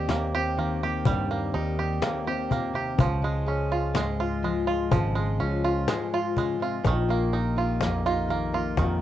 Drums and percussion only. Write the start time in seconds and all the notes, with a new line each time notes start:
0.09 cajon slap, snare
0.57 cajon slap
1.05 cajon bass, kick
1.29 cajon slap
2.02 snare, cajon slap
2.51 cajon bass
2.99 cajon bass, kick
3.95 cajon slap, snare
4.43 cajon slap
4.91 cajon bass, kick
5.15 cajon slap
5.39 cajon slap
5.88 cajon slap, snare
6.37 cajon bass
6.85 cajon bass, kick, cajon slap
7.57 cajon slap
7.81 cajon slap, snare
8.29 cajon slap
8.53 cajon slap
8.77 cajon bass, kick, cajon slap